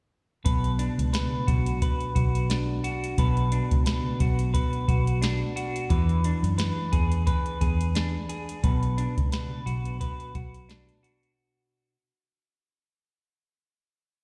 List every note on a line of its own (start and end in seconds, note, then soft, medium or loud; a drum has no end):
0.45 0.88 B1 medium
0.45 3.17 B2 medium
0.45 1.13 B4 medium
0.45 kick loud
0.45 closed hi-hat medium
0.64 closed hi-hat soft
0.79 2.49 D4 medium
0.79 closed hi-hat medium
0.98 1.26 C#2 medium
0.98 closed hi-hat medium
1.13 1.82 B4 medium
1.13 snare loud
1.13 closed hi-hat loud
1.47 1.90 B1 medium
1.47 2.14 F#4 medium
1.47 kick medium
1.47 closed hi-hat medium
1.66 closed hi-hat medium
1.82 3.18 B4 medium
1.82 kick medium
1.82 closed hi-hat medium
2.00 closed hi-hat soft
2.15 3.14 B1 medium
2.15 2.83 F#4 soft
2.15 kick medium
2.15 closed hi-hat medium
2.35 closed hi-hat soft
2.50 3.52 D4 medium
2.50 snare loud
2.50 closed hi-hat medium
2.84 4.19 F#4 medium
2.84 closed hi-hat medium
3.04 closed hi-hat soft
3.18 3.60 B1 loud
3.18 5.91 B2 medium
3.18 3.86 B4 medium
3.18 kick loud
3.18 closed hi-hat medium
3.37 closed hi-hat soft
3.52 5.21 D4 medium
3.52 closed hi-hat medium
3.71 3.98 C#2 medium
3.71 kick medium
3.71 closed hi-hat medium
3.86 4.53 B4 medium
3.86 snare loud
3.86 closed hi-hat loud
4.20 4.63 B1 medium
4.20 4.87 F#4 medium
4.20 kick loud
4.20 closed hi-hat medium
4.39 closed hi-hat medium
4.54 5.90 B4 medium
4.54 kick medium
4.54 closed hi-hat medium
4.73 closed hi-hat soft
4.88 5.43 B1 medium
4.88 5.55 F#4 medium
4.88 kick medium
4.88 closed hi-hat medium
5.07 closed hi-hat soft
5.22 6.24 D4 medium
5.22 snare loud
5.22 closed hi-hat medium
5.56 5.98 F#4 medium
5.56 closed hi-hat medium
5.76 closed hi-hat soft
5.90 6.33 E2 loud
5.90 8.64 E3 medium
5.90 6.58 B4 medium
5.90 kick loud
5.90 closed hi-hat medium
6.09 closed hi-hat soft
6.24 7.95 D4 medium
6.24 closed hi-hat medium
6.43 6.70 F#2 medium
6.43 closed hi-hat soft
6.58 7.26 B4 medium
6.58 snare medium
6.58 closed hi-hat loud
6.92 7.35 E2 medium
6.92 7.60 G#4 medium
6.92 kick loud
6.92 closed hi-hat medium
7.12 closed hi-hat soft
7.27 8.64 B4 medium
7.27 kick medium
7.27 closed hi-hat medium
7.46 closed hi-hat soft
7.61 8.16 E2 medium
7.61 8.28 G#4 medium
7.61 kick loud
7.61 closed hi-hat medium
7.81 closed hi-hat medium
7.95 8.97 D4 medium
7.95 snare loud
7.95 closed hi-hat medium
8.29 8.71 G#4 medium
8.29 closed hi-hat medium
8.49 closed hi-hat soft
8.63 9.06 B1 medium
8.63 11.95 B2 medium
8.63 9.32 B4 medium
8.63 kick loud
8.63 closed hi-hat medium
8.83 closed hi-hat soft
8.98 10.68 D4 medium
8.98 closed hi-hat medium
9.17 9.45 C#2 medium
9.17 kick medium
9.17 closed hi-hat medium
9.32 10.00 B4 medium
9.32 snare loud
9.32 closed hi-hat loud
9.66 10.09 B1 medium
9.66 10.35 F#4 medium
9.66 closed hi-hat medium
9.85 closed hi-hat medium
10.01 11.95 B4 medium
10.01 kick medium
10.01 closed hi-hat medium
10.20 closed hi-hat soft
10.35 10.90 B1 medium
10.35 11.03 F#4 medium
10.35 kick loud
10.35 closed hi-hat medium
10.54 closed hi-hat medium
10.69 11.95 D4 medium
10.69 snare loud
10.69 closed hi-hat medium
10.89 closed hi-hat soft
11.03 11.95 F#4 medium
11.03 closed hi-hat medium
11.23 closed hi-hat soft